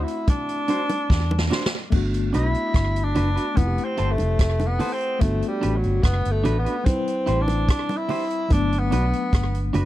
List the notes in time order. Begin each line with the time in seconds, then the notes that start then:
Already playing: A3 C4 E4 F#4
0.03 E4
0.07 muted clean electric guitar stroke, closed hi-hat
0.27 D4, kick, closed hi-hat, high bongo
0.49 closed hi-hat
0.68 D4 F#4 C5, closed hi-hat, high bongo
0.90 closed hi-hat, high bongo
1.10 E2, kick, snare
1.31 high bongo
1.39 snare
1.50 D4 F#4 C5, snare, low bongo
1.66 snare
1.90 G1 A3 B3, kick, crash, high bongo
1.94 D4 F#4
2.14 closed hi-hat
2.33 B1 D4 E4 F#4 B4, closed hi-hat, high bongo
2.54 closed hi-hat
2.74 G1, kick, cross-stick, closed hi-hat
2.96 closed hi-hat
3.04 D4
3.15 F#1 D4 F#4 B4, closed hi-hat, low bongo
3.36 D4 F#4 B4, closed hi-hat
3.54 F1 A3 B3 C4, kick, closed hi-hat, high bongo
3.59 E4 F4
3.67 G4
3.78 closed hi-hat
3.84 C4
3.97 G1 E4 A4 C5, closed hi-hat
4.11 A3
4.18 F1, muted clean electric guitar stroke, closed hi-hat, high bongo
4.39 F1, kick, cross-stick, closed hi-hat
4.60 closed hi-hat, high bongo
4.66 B3
4.79 E4 A4 C5, open hi-hat, low bongo
4.93 C4
5.01 closed hi-hat
5.19 G1 A3 B3, kick, closed hi-hat, high bongo
5.23 D4 F#4
5.42 closed hi-hat
5.48 G3
5.61 A1 D4 F#4 B4, closed hi-hat, high bongo
5.76 F#3
5.84 G1, closed hi-hat
6.03 F#1 B3, kick, cross-stick, closed hi-hat
6.25 G1, closed hi-hat
6.31 A3
6.44 A1 D4 F#4 B4, closed hi-hat, low bongo
6.59 B3
6.65 D4 F#4 B4, closed hi-hat
6.84 G3 C4 B4, kick, closed hi-hat, high bongo
6.90 E4
7.08 closed hi-hat
7.26 A1 E4 G4 C5, closed hi-hat
7.41 D4
7.48 muted clean electric guitar stroke, closed hi-hat, high bongo
7.69 kick, cross-stick, closed hi-hat
7.89 closed hi-hat, high bongo
7.97 E4
8.09 E4 G4 C5, open hi-hat, low bongo
8.30 closed hi-hat
8.48 G1 F#3 A3 B3 D4, kick, closed hi-hat, high bongo
8.55 D4
8.73 closed hi-hat
8.79 B3
8.91 B1 D4 F#4 B4, closed hi-hat, high bongo
9.13 closed hi-hat
9.33 G1, kick, cross-stick, closed hi-hat
9.55 closed hi-hat
9.73 F#1 D4 F#4 B4, closed hi-hat, low bongo